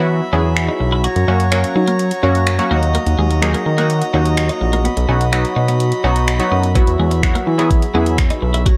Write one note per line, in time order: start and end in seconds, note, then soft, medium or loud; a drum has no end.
0.00 0.21 E3 medium
0.00 0.24 F#3 loud
0.00 8.77 F#3 medium
0.00 0.24 B3 medium
0.00 0.24 E4 medium
0.00 0.24 F#4 loud
0.00 1.02 E5 medium
0.00 1.02 B5 medium
0.33 0.69 E2 medium
0.33 1.04 F#3 medium
0.33 1.04 B3 medium
0.33 0.40 C#4 medium
0.33 1.04 E4 medium
0.33 1.04 G#4 loud
0.57 finger snap loud
0.69 0.76 D#4 medium
0.80 1.08 B1 medium
0.80 muted clean electric guitar stroke soft
0.92 1.00 E4 medium
1.04 1.11 F#4 medium
1.04 2.69 C#5 medium
1.04 2.69 A#5 medium
1.04 closed hi-hat medium
1.16 1.25 F#2 medium
1.16 muted clean electric guitar stroke soft
1.16 closed hi-hat medium
1.28 1.64 F#2 loud
1.28 1.46 F#3 medium
1.28 1.46 A#3 medium
1.28 1.46 C#4 medium
1.28 1.35 C#4 medium
1.28 1.46 F#4 loud
1.40 closed hi-hat medium
1.51 2.06 F#3 medium
1.51 2.06 A#3 medium
1.51 2.06 C#4 medium
1.51 2.06 F#4 medium
1.51 finger snap loud
1.51 muted clean electric guitar stroke soft
1.51 closed hi-hat medium
1.64 closed hi-hat medium
1.76 2.12 F#3 medium
1.76 1.83 D#4 medium
1.88 1.95 A#3 medium
1.88 closed hi-hat medium
1.99 closed hi-hat medium
2.11 closed hi-hat medium
2.23 2.60 F#2 loud
2.23 2.50 F#3 loud
2.23 2.50 A#3 medium
2.23 2.50 C#4 medium
2.23 2.30 C#4 medium
2.23 2.50 F#4 loud
2.35 closed hi-hat medium
2.47 finger snap loud
2.47 closed hi-hat medium
2.59 2.69 F#3 loud
2.59 2.70 A#3 loud
2.59 2.71 C#4 loud
2.59 2.70 F#4 loud
2.59 closed hi-hat medium
2.71 2.98 D#2 medium
2.71 3.28 F#3 medium
2.71 3.28 A#3 medium
2.71 2.78 A#3 medium
2.71 3.28 D#4 medium
2.71 3.28 F#4 loud
2.71 6.72 D#5 medium
2.71 4.83 A#5 medium
2.83 closed hi-hat soft
2.95 3.02 A#3 medium
2.95 closed hi-hat medium
3.06 3.16 D#2 medium
3.06 closed hi-hat medium
3.18 3.55 D#2 loud
3.18 3.26 G#3 medium
3.31 muted clean electric guitar stroke soft
3.31 closed hi-hat medium
3.42 3.69 F#3 loud
3.42 3.69 A#3 medium
3.42 3.69 D#4 medium
3.42 3.69 G#4 loud
3.42 finger snap loud
3.42 closed hi-hat medium
3.54 3.61 A#3 medium
3.54 closed hi-hat medium
3.66 4.02 D#3 medium
3.66 muted clean electric guitar stroke soft
3.78 4.05 F#3 loud
3.78 4.05 A#3 medium
3.78 3.85 A#3 medium
3.78 4.05 D#4 medium
3.78 4.05 F#4 loud
3.78 closed hi-hat medium
3.90 closed hi-hat medium
4.02 closed hi-hat medium
4.13 4.50 D#2 loud
4.13 4.85 F#3 medium
4.13 4.85 A#3 medium
4.13 4.21 C#4 medium
4.13 4.85 D#4 medium
4.13 4.85 F#4 medium
4.26 closed hi-hat medium
4.37 finger snap loud
4.37 closed hi-hat medium
4.49 4.57 D#4 medium
4.49 closed hi-hat medium
4.61 4.88 A#1 medium
4.61 muted clean electric guitar stroke soft
4.73 4.80 A#3 medium
4.73 closed hi-hat soft
4.85 4.92 B3 medium
4.85 8.62 B5 medium
4.85 closed hi-hat medium
4.97 5.06 B1 medium
4.97 muted clean electric guitar stroke soft
4.97 closed hi-hat medium
5.09 5.45 B1 loud
5.09 5.27 F#3 medium
5.09 5.27 B3 medium
5.09 5.16 C#4 medium
5.09 5.27 D#4 medium
5.09 5.27 F#4 medium
5.21 closed hi-hat medium
5.32 5.87 F#3 medium
5.32 5.87 B3 medium
5.32 5.87 D#4 medium
5.32 5.87 F#4 loud
5.32 finger snap loud
5.32 muted clean electric guitar stroke soft
5.32 closed hi-hat medium
5.45 closed hi-hat medium
5.56 5.93 B2 medium
5.56 5.64 D#4 medium
5.68 5.76 B3 medium
5.68 closed hi-hat medium
5.80 closed hi-hat medium
5.92 closed hi-hat medium
6.04 6.40 B1 loud
6.04 6.31 F#3 loud
6.04 6.31 B3 medium
6.04 6.11 C#4 medium
6.04 6.31 D#4 medium
6.04 6.31 F#4 loud
6.16 closed hi-hat medium
6.28 finger snap loud
6.28 closed hi-hat medium
6.39 6.67 F#3 loud
6.39 6.67 B3 loud
6.39 6.67 D#4 loud
6.39 6.67 F#4 loud
6.39 closed hi-hat medium
6.52 6.79 F#2 medium
6.52 6.59 B3 medium
6.63 closed hi-hat medium
6.75 7.11 F#3 loud
6.75 7.12 B3 medium
6.75 6.83 B3 medium
6.75 7.12 E4 medium
6.75 7.12 F#4 loud
6.75 8.64 E5 medium
6.75 kick loud
6.75 closed hi-hat medium
6.87 6.96 E2 medium
6.87 closed hi-hat medium
6.99 7.36 E2 loud
6.99 7.07 G#3 medium
7.11 muted clean electric guitar stroke soft
7.11 closed hi-hat medium
7.23 7.50 F#3 loud
7.23 7.50 B3 medium
7.23 7.50 E4 medium
7.23 7.50 F#4 loud
7.23 finger snap loud
7.23 kick loud
7.23 closed hi-hat medium
7.35 7.42 A#3 medium
7.35 closed hi-hat medium
7.47 7.83 E3 medium
7.47 muted clean electric guitar stroke soft
7.58 7.86 F#3 loud
7.58 7.86 B3 medium
7.58 7.66 B3 medium
7.58 7.86 E4 medium
7.58 7.86 G#4 loud
7.58 closed hi-hat medium
7.71 kick loud
7.71 closed hi-hat medium
7.82 closed hi-hat medium
7.94 8.31 E2 loud
7.94 8.66 F#3 medium
7.94 8.66 B3 medium
7.94 8.02 C#4 medium
7.94 8.66 E4 medium
7.94 8.66 G#4 loud
8.06 closed hi-hat medium
8.18 finger snap loud
8.18 kick loud
8.18 closed hi-hat medium
8.30 8.38 D#4 medium
8.30 closed hi-hat medium
8.42 8.69 B1 medium
8.42 muted clean electric guitar stroke soft
8.54 8.61 E4 medium
8.54 closed hi-hat soft
8.66 8.73 F#4 medium
8.66 8.77 C#5 medium
8.66 8.77 A#5 medium
8.66 kick loud
8.66 closed hi-hat medium